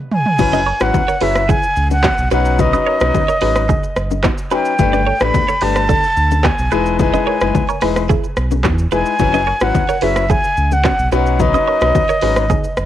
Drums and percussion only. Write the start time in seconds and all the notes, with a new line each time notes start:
0.11 floor tom
0.26 floor tom
0.39 kick, crash, low conga, shaker
0.53 low bongo, shaker
0.80 cross-stick, shaker
0.94 kick, high bongo, low conga, shaker
1.09 shaker
1.21 open hi-hat
1.35 cross-stick, shaker
1.49 kick, low conga, shaker
1.63 shaker
1.76 shaker
1.91 low bongo, shaker
2.03 kick, cross-stick, clap, high bongo, shaker
2.18 shaker
2.31 shaker
2.45 shaker
2.59 kick, low conga, shaker
2.73 low bongo, shaker
3.00 cross-stick, shaker
3.14 kick, high bongo, low conga, shaker
3.29 shaker
3.41 open hi-hat
3.56 cross-stick, shaker
3.69 kick, low conga, shaker
3.84 shaker
3.96 cross-stick, shaker
4.11 low bongo, shaker
4.24 kick, cross-stick, clap, high bongo, shaker
4.38 shaker
4.51 shaker
4.65 shaker
4.79 kick, low conga, shaker
4.94 low bongo, shaker
5.20 cross-stick, shaker
5.34 kick, high bongo, low conga, shaker
5.49 shaker
5.61 open hi-hat
5.76 cross-stick, shaker
5.89 kick, low conga, shaker
6.04 shaker
6.17 shaker
6.31 low bongo, shaker
6.44 kick, cross-stick, clap, high bongo, shaker
6.59 shaker
6.71 shaker
6.86 shaker
6.99 kick, low conga, shaker
7.14 low bongo, shaker
7.41 cross-stick, shaker
7.55 kick, high bongo, low conga, shaker
7.69 shaker
7.81 cross-stick, open hi-hat, shaker
7.96 cross-stick, shaker
8.10 kick, low conga, shaker
8.24 shaker
8.37 cross-stick, shaker
8.51 low bongo, shaker
8.64 kick, cross-stick, clap, high bongo, shaker
8.79 shaker
8.91 shaker
9.06 shaker
9.19 kick, low conga, shaker
9.34 low bongo, shaker
9.61 cross-stick, shaker
9.75 kick, high bongo, low conga, shaker
9.89 shaker
10.01 open hi-hat
10.16 cross-stick, shaker
10.30 kick, low conga, shaker
10.44 shaker
10.57 shaker
10.72 low bongo, shaker
10.84 kick, cross-stick, clap, high bongo, shaker
10.99 shaker
11.12 shaker
11.26 shaker
11.40 kick, low conga, shaker
11.54 low bongo, shaker
11.81 cross-stick, shaker
11.95 kick, high bongo, low conga, shaker
12.09 shaker
12.21 open hi-hat
12.36 cross-stick, shaker
12.50 kick, low conga, shaker
12.64 shaker
12.77 cross-stick, shaker